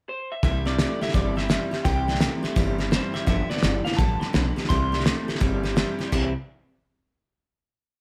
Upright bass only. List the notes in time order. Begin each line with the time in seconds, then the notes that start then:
0.43 C2
1.02 muted upright bass stroke
1.14 G1
1.72 muted upright bass stroke
1.85 C2
2.44 muted upright bass stroke
2.56 G1
3.15 muted upright bass stroke
3.28 G1
3.50 muted upright bass stroke
3.63 G1
3.99 A1
4.22 muted upright bass stroke
4.35 B1
4.70 C2
5.29 muted upright bass stroke
5.41 G1
6.00 muted upright bass stroke
6.13 C2